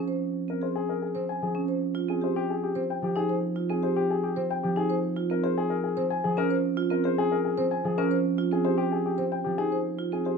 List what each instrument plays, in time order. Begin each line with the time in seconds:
Already playing: harp F3 C4, marimba C#4
0.08 marimba C5
0.48 marimba C4, grand piano A#4
0.62 marimba G#4, grand piano C5
0.76 grand piano G#4
0.89 grand piano A#4
1.02 grand piano G#4
1.15 harp C4, marimba C5
1.29 grand piano G#5
1.42 harp F3, grand piano G#4
1.55 marimba C#4
1.68 marimba C5
1.95 marimba F4
2.08 marimba C4, grand piano G#4
2.21 marimba G4, grand piano C5
2.36 grand piano G4
2.50 grand piano G#4
2.64 grand piano G4
2.75 harp C4, marimba C5
2.90 grand piano G5
3.02 harp F3, grand piano G4
3.16 marimba D#4, grand piano G#4
3.29 marimba C5
3.56 marimba F4
3.69 marimba C4, grand piano G#4
3.83 marimba G4, grand piano C5
3.96 grand piano G4
4.11 grand piano G#4
4.24 grand piano G4
4.36 harp C4, marimba C5
4.50 grand piano G5
4.63 harp F3, grand piano G4
4.76 marimba D#4, grand piano G#4
4.90 marimba C5
5.16 marimba F4
5.30 marimba C4, grand piano A#4
5.44 marimba G#4, grand piano C5
5.58 grand piano G#4
5.70 grand piano A#4
5.84 grand piano G#4
5.97 harp C4, marimba C5
6.10 grand piano G#5
6.24 harp F3, grand piano G#4
6.37 marimba C#4, grand piano A#4
6.50 marimba C5
6.77 marimba F4
6.90 marimba C4, grand piano A#4
7.04 marimba G#4, grand piano C5
7.18 grand piano G#4
7.32 grand piano A#4
7.45 grand piano G#4
7.58 harp C4, marimba C5
7.71 grand piano G#5
7.84 harp F3, grand piano G#4
7.98 marimba C#4, grand piano A#4
8.11 marimba C5
8.38 marimba F4
8.52 marimba C4, grand piano G#4
8.65 marimba G4, grand piano C5
8.78 grand piano G4
8.92 grand piano G#4
9.06 grand piano G4
9.18 harp C4, marimba C5
9.32 grand piano G5
9.44 harp F3, grand piano G4
9.58 marimba D#4, grand piano G#4
9.72 marimba C5
9.99 marimba F4
10.12 marimba C4, grand piano G#4
10.25 marimba G4, grand piano C5